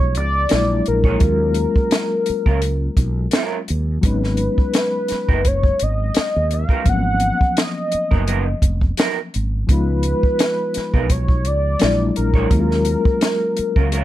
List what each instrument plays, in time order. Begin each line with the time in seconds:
Already playing: fretless electric bass B1, reed electric piano F3 G#3 B3 D#4 F4, soft synth lead C#5
0.15 fretless electric bass C#2, soft synth lead D5, closed hi-hat
0.49 fretless electric bass A#1, reed electric piano F#3 G#3 A#3 D4 E4, snare, closed hi-hat
0.86 fretless electric bass A#1, soft synth lead A#4, closed hi-hat
1.04 clean electric guitar A#3 D4 G#4 C#5, kick
1.19 fretless electric bass D#2, reed electric piano F#3 G#3 A#3 C#4, kick, closed hi-hat
1.24 reed electric piano F4
1.54 closed hi-hat
1.76 kick
1.91 snare, closed hi-hat
2.26 muted fretless electric bass stroke, closed hi-hat
2.46 fretless electric bass C#2, clean electric guitar F#3 C#4 F4 A#4, kick
2.62 closed hi-hat
2.97 fretless electric bass B1, kick, closed hi-hat
3.31 clean electric guitar F#3 C#4 F4 A#4, snare, closed hi-hat
3.68 fretless electric bass D#2, closed hi-hat
4.01 fretless electric bass G#1, reed electric piano F#3 G#3 B3 C#4, soft synth lead B4, kick, closed hi-hat
4.06 reed electric piano D#4
4.24 snare
4.37 closed hi-hat
4.58 kick
4.74 snare, closed hi-hat
5.08 muted fretless electric bass stroke, snare, closed hi-hat
5.29 fretless electric bass F#1, clean electric guitar F#3 B3 D#4 A#4, kick
5.45 soft synth lead C#5, kick, closed hi-hat
5.63 kick
5.80 fretless electric bass G#1, soft synth lead D#5, closed hi-hat
6.14 muted fretless electric bass stroke, snare, closed hi-hat
6.36 fretless electric bass D#2
6.51 soft synth lead F5, closed hi-hat
6.69 clean electric guitar F#3 B3 D#4 A#4, kick
6.84 fretless electric bass G#1, reed electric piano F#3 A#3 B3 C#4, kick, closed hi-hat
6.89 reed electric piano F3, soft synth lead F#5
7.20 closed hi-hat
7.41 kick
7.57 soft synth lead D#5, snare, closed hi-hat
7.92 muted fretless electric bass stroke, closed hi-hat
8.11 fretless electric bass F#1, clean electric guitar F#3 B3 D#4 A#4, kick
8.27 clean electric guitar F#3 B3 D#4 A#4, closed hi-hat
8.62 fretless electric bass F1, kick, closed hi-hat
8.81 kick
8.97 clean electric guitar F#3 B3 D#4 A#4, snare, closed hi-hat
9.34 fretless electric bass G#1, closed hi-hat
9.67 fretless electric bass C#2, reed electric piano F3 G#3 B3 D#4, soft synth lead B4, kick, closed hi-hat
9.72 reed electric piano F4
10.03 closed hi-hat
10.23 kick
10.39 snare, closed hi-hat
10.74 muted fretless electric bass stroke, snare, closed hi-hat
10.94 fretless electric bass B1, clean electric guitar B3 D#4 F4 A#4, kick
11.10 soft synth lead C#5, kick, closed hi-hat
11.28 kick
11.45 fretless electric bass C#2, soft synth lead D5, closed hi-hat
11.79 fretless electric bass A#1, reed electric piano F#3 G#3 A#3 D4 E4, snare, closed hi-hat
12.16 fretless electric bass A#1, soft synth lead A#4, closed hi-hat
12.34 clean electric guitar A#3 D4 G#4 C#5, kick
12.49 fretless electric bass D#2, reed electric piano F#3 G#3 A#3 C#4, kick, closed hi-hat
12.54 reed electric piano E4
12.60 reed electric piano F4
12.71 snare
12.85 closed hi-hat
13.05 kick
13.21 snare, closed hi-hat
13.57 muted fretless electric bass stroke, closed hi-hat
13.76 fretless electric bass C#2, clean electric guitar F#3 C#4 F4 A#4, kick
13.92 clean electric guitar F#3 C#4 F4 A#4, closed hi-hat